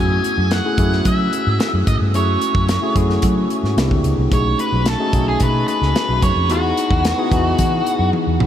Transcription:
Already playing: fingered electric bass F#2, tine electric piano A3 C#4 E4 F#4 G#4
0.00 lead electric guitar G#5
0.24 closed hi-hat
0.38 fingered electric bass F#2
0.51 lead electric guitar F#5, snare, closed hi-hat
0.64 tine electric piano A3 C#4 E4 F#4 G#4
0.78 fingered electric bass F#2, tine electric piano A3 C#4 E4 F#4 G#4, kick, closed hi-hat
0.92 snare
1.05 fingered electric bass F#3, lead electric guitar E5, kick, closed hi-hat
1.33 closed hi-hat
1.47 fingered electric bass G#2
1.60 lead electric guitar E5, snare, closed hi-hat
1.74 fingered electric bass F#2
1.87 fingered electric bass G#2, lead electric guitar D#5, kick, closed hi-hat
2.01 fingered electric bass G2
2.14 fingered electric bass F#2, tine electric piano A3 C#4 E4 F#4 G#4, lead electric guitar C#5, closed hi-hat
2.42 closed hi-hat
2.55 fingered electric bass F#2, kick
2.69 snare, closed hi-hat
2.82 tine electric piano A3 C#4 E4 F#4 G#4
2.95 fingered electric bass F#2, tine electric piano A3 C#4 E4 F#4 G#4, kick, closed hi-hat
3.10 snare
3.22 fingered electric bass F#3, kick, closed hi-hat
3.50 closed hi-hat
3.63 fingered electric bass G#2, snare
3.77 fingered electric bass C2, tine electric piano A#3 C4 D4 E4 G4, snare, closed hi-hat
3.91 fingered electric bass D2, kick
4.04 fingered electric bass C#2, closed hi-hat
4.18 fingered electric bass C2
4.31 fingered electric bass B1, tine electric piano A3 C#4 D#4 F#4 G#4, lead electric guitar C#5, kick, closed hi-hat
4.59 lead electric guitar B4, closed hi-hat
4.72 fingered electric bass B1
4.86 lead electric guitar A4, snare, closed hi-hat
4.99 tine electric piano A3 C#4 D#4 F#4 G#4
5.13 fingered electric bass B1, tine electric piano A3 C#4 D#4 F#4 G#4, kick, closed hi-hat
5.28 lead electric guitar G#4
5.40 fingered electric bass B2, lead electric guitar B4, kick, closed hi-hat
5.68 lead electric guitar B4, closed hi-hat
5.81 fingered electric bass C#2, snare
5.96 snare, closed hi-hat
6.09 fingered electric bass B1
6.22 fingered electric bass F#2, lead electric guitar C#5, kick, closed hi-hat
6.36 fingered electric bass F2
6.49 fingered electric bass E2, tine electric piano B3 D#4 E4 F#4 G4, lead electric guitar F#4, closed hi-hat
6.57 tine electric piano G#4
6.77 closed hi-hat
6.90 fingered electric bass E2, kick
7.05 snare, closed hi-hat
7.18 tine electric piano B3 D#4 E4 F#4 G#4
7.30 fingered electric bass E2, tine electric piano B3 D#4 E4 F#4 G#4, kick, closed hi-hat
7.59 fingered electric bass E3, kick, closed hi-hat
7.87 closed hi-hat
7.99 fingered electric bass F#2
8.13 high tom
8.27 fingered electric bass E2
8.40 fingered electric bass B1, mid tom

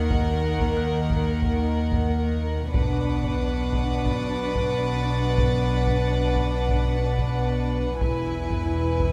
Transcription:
Already playing: synth drone D#2, double bass section D#2, cello section D#3, viola section A#3, violin section A#4 F#5
0.10 taiko
0.60 taiko
0.77 music box F#6
1.10 taiko
1.42 taiko
1.92 taiko
2.72 synth drone B1, double bass section B1, cello section B2, viola section D4, violin section B4 F#5 D6 D#6, taiko
3.24 taiko
3.73 taiko
4.06 violin section A6, taiko
4.55 taiko
5.38 taiko
5.87 taiko
6.36 taiko
6.69 taiko
7.19 taiko
7.99 double bass section E1, synth drone E2, cello section E2, viola section E4, violin section B4 G#5, taiko
8.50 taiko
9.00 taiko

